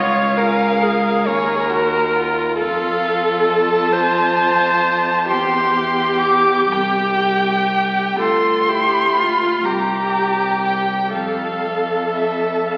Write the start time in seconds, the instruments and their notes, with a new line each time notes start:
Already playing: cello C#2, violin F4 F5, viola C#5
0.36 violin G#4, viola A#4
0.81 viola G#4, violin A#4
1.26 cello D#2, violin G#4 C#5, viola A#4
1.70 violin F#4
2.15 violin F4
2.59 cello F2, violin F4 F5, viola A4
3.51 violin A5
3.92 viola C5
5.29 cello E2, viola G4, violin G4 C6
6.22 violin D6
6.70 cello C2, violin G4 G5
8.19 cello D2, violin F4 C6, viola A4
8.69 violin E4, viola G4
9.17 viola F4, violin F4
9.65 cello C2, viola G4, violin G4 A#5
10.65 violin G5
11.13 cello F2, viola A4, violin A4 F5
12.16 violin E5
12.67 violin F5